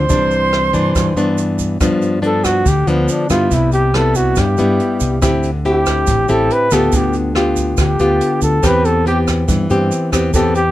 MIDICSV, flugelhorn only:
0, 0, Header, 1, 2, 480
1, 0, Start_track
1, 0, Key_signature, 0, "major"
1, 0, Tempo, 426439
1, 116, Time_signature, 4, 2, 24, 8
1, 12060, End_track
2, 0, Start_track
2, 0, Title_t, "Flugelhorn"
2, 0, Program_c, 0, 56
2, 0, Note_on_c, 0, 72, 88
2, 1561, Note_off_c, 0, 72, 0
2, 2540, Note_on_c, 0, 69, 81
2, 2751, Note_on_c, 0, 66, 90
2, 2768, Note_off_c, 0, 69, 0
2, 3021, Note_on_c, 0, 67, 80
2, 3038, Note_off_c, 0, 66, 0
2, 3241, Note_on_c, 0, 59, 65
2, 3258, Note_off_c, 0, 67, 0
2, 3500, Note_on_c, 0, 62, 62
2, 3517, Note_off_c, 0, 59, 0
2, 3712, Note_off_c, 0, 62, 0
2, 3719, Note_on_c, 0, 65, 91
2, 3982, Note_on_c, 0, 64, 76
2, 3999, Note_off_c, 0, 65, 0
2, 4194, Note_off_c, 0, 64, 0
2, 4200, Note_on_c, 0, 67, 83
2, 4454, Note_on_c, 0, 69, 85
2, 4471, Note_off_c, 0, 67, 0
2, 4686, Note_on_c, 0, 66, 82
2, 4703, Note_off_c, 0, 69, 0
2, 4948, Note_on_c, 0, 67, 78
2, 4965, Note_off_c, 0, 66, 0
2, 5893, Note_off_c, 0, 67, 0
2, 6400, Note_on_c, 0, 67, 90
2, 7094, Note_on_c, 0, 69, 84
2, 7110, Note_off_c, 0, 67, 0
2, 7346, Note_on_c, 0, 71, 94
2, 7363, Note_off_c, 0, 69, 0
2, 7574, Note_on_c, 0, 69, 83
2, 7591, Note_off_c, 0, 71, 0
2, 7834, Note_on_c, 0, 67, 72
2, 7851, Note_off_c, 0, 69, 0
2, 8056, Note_off_c, 0, 67, 0
2, 8778, Note_on_c, 0, 67, 80
2, 9443, Note_off_c, 0, 67, 0
2, 9490, Note_on_c, 0, 69, 82
2, 9759, Note_on_c, 0, 71, 92
2, 9776, Note_off_c, 0, 69, 0
2, 9964, Note_on_c, 0, 69, 87
2, 9981, Note_off_c, 0, 71, 0
2, 10202, Note_off_c, 0, 69, 0
2, 10208, Note_on_c, 0, 67, 83
2, 10349, Note_off_c, 0, 67, 0
2, 11644, Note_on_c, 0, 69, 82
2, 11864, Note_off_c, 0, 69, 0
2, 11884, Note_on_c, 0, 67, 98
2, 12060, Note_off_c, 0, 67, 0
2, 12060, End_track
0, 0, End_of_file